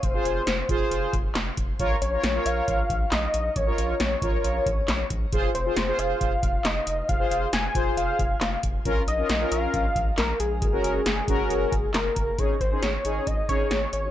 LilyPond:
<<
  \new Staff \with { instrumentName = "Analog synth lead" } { \time 4/4 \key f \phrygian \tempo 4 = 136 c''2 r2 | r8 des''4 f''4. ees''4 | des''4 des''4 des''4. r8 | r8 c''4 f''4. ees''4 |
f''4 aes''4 f''4. r8 | r8 ees''4 f''4. bes'8 aes'8~ | aes'2. bes'4 | des''8 c''8 des''4 ees''8 des''4 des''8 | }
  \new Staff \with { instrumentName = "Analog polysynth" } { \time 4/4 \key f \phrygian <aes' c''>16 <f' aes' c''>8. r8 <f' aes' c''>4 r4. | <f' bes' des''>8 r16 <f' bes' des''>16 r16 <f' bes' des''>4 r4. r16 | <bes' des''>16 <f' bes' des''>8. r8 <f' bes' des''>4 r4. | <f' aes' c''>8 r16 <f' aes' c''>16 r16 <f' aes' c''>4 r4. r16 |
<aes' c''>16 <f' aes' c''>8. r8 <f' aes' c''>4 r4. | <des' f' bes'>8 r16 <des' f' bes'>16 r16 <des' f' bes'>4 r4. r16 | <ges' bes'>16 <des' ges' bes'>8. r8 <des' ges' bes'>4 r4. | <des' ees' aes'>8 r16 <des' ees' aes'>8 r16 <des' ees' aes'>8 r8 <des' ees' aes'>8. r8 <ees' ges'>16 | }
  \new Staff \with { instrumentName = "Analog synth bass" } { \clef bass \time 4/4 \key f \phrygian f,,8 f,,8 f,,8 f,,8 f,,8 f,,8 f,,8 f,,8 | bes,,8 bes,,8 bes,,8 bes,,8 bes,,8 bes,,8 bes,,8 bes,,8 | bes,,8 bes,,8 bes,,8 bes,,8 bes,,8 bes,,8 bes,,8 bes,,8 | f,,8 f,,8 f,,8 f,,8 f,,8 f,,8 f,,8 f,,8 |
f,,8 f,,8 f,,8 f,,8 f,,8 f,,8 f,,8 f,,8 | bes,,8 bes,,8 bes,,8 bes,,8 bes,,8 bes,,8 bes,,8 bes,,8 | ges,,8 ges,,8 ges,,8 ges,,8 ges,,8 ges,,8 ges,,8 ges,,8 | aes,,8 aes,,8 aes,,8 aes,,8 aes,,8 aes,,8 aes,,8 aes,,8 | }
  \new DrumStaff \with { instrumentName = "Drums" } \drummode { \time 4/4 <hh bd>8 hh8 <hh sn>8 <hh bd>8 hh8 <hh bd>8 <hc hh sn>8 <hh bd>8 | <hh bd>8 hh8 <hh sn>8 hh8 <hh bd>8 <hh bd>8 <hc hh sn>8 hh8 | <hh bd>8 hh8 <hh sn>8 <hh bd>8 hh8 <hh bd>8 <hc hh sn>8 <hh bd>8 | <hh bd>8 hh8 <hh sn>8 hh8 <hh bd>8 <hh bd>8 <hc hh sn>8 hh8 |
<hh bd>8 hh8 <hh sn>8 <hh bd>8 hh8 <hh bd>8 <hc hh sn>8 <hh bd>8 | <hh bd>8 hh8 <hh sn>8 hh8 <hh bd>8 <hh bd>8 <hc hh sn>8 hh8 | <hh bd>8 hh8 <hh sn>8 <hh bd>8 hh8 <hh bd>8 <hc hh sn>8 <hh bd>8 | <hh bd>8 <hh bd>8 <hh sn>8 hh8 <hh bd>8 <hh bd>8 <hh sn>8 hh8 | }
>>